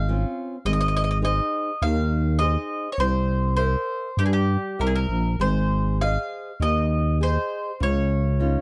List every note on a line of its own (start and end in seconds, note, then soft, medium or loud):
0.00 0.25 G#1 loud
0.00 0.68 F5 medium
0.09 0.54 C4 soft
0.09 0.55 C#4 soft
0.09 0.55 F4 medium
0.65 1.41 G#1 medium
0.65 1.22 G#3 medium
0.65 0.72 D#5 medium
0.73 0.79 D#5 medium
0.81 0.87 D#5 medium
0.88 0.95 D#5 medium
0.97 1.03 D#5 medium
1.04 1.10 D#5 medium
1.11 1.17 D#5 medium
1.22 1.69 D#4 soft
1.22 1.69 G#4 soft
1.22 1.69 C5 medium
1.22 1.84 D#5 medium
1.82 2.57 D#2 medium
1.82 2.38 D#3 medium
1.82 2.42 F5 medium
2.39 2.86 D#4 soft
2.39 2.87 G#4 soft
2.39 2.87 C5 medium
2.39 2.92 D#5 medium
2.92 2.98 C#5 medium
2.98 3.76 C2 loud
2.98 3.55 C4 medium
2.98 3.54 C5 medium
3.57 4.06 A#4 soft
3.57 4.20 C5 medium
3.57 4.07 C5 soft
3.57 4.07 E5 soft
4.17 4.57 G2 medium
4.17 4.78 G3 medium
4.17 4.25 G4 medium
4.26 4.33 G#4 medium
4.33 4.81 G4 medium
4.79 5.07 C2 medium
4.79 5.27 A#4 soft
4.79 4.87 A#4 medium
4.79 5.27 C5 soft
4.79 5.28 E5 soft
4.87 4.93 G#4 medium
4.96 5.41 A#4 medium
5.09 5.36 A#1 medium
5.39 6.18 G#1 medium
5.39 5.98 G#3 medium
5.39 5.97 C5 medium
6.01 6.49 G#4 soft
6.01 6.49 C5 soft
6.01 6.49 D#5 soft
6.01 6.63 F5 medium
6.60 7.38 D#2 medium
6.60 7.18 D#3 soft
6.60 7.17 D#5 medium
7.21 7.69 G#4 soft
7.21 7.69 C5 soft
7.21 7.83 C5 medium
7.21 7.69 D#5 soft
7.80 8.57 C#2 medium
7.80 8.38 C#3 medium
7.80 8.61 C#5 medium
8.40 8.61 C#4 soft
8.40 8.61 D#4 soft
8.40 8.61 F4 soft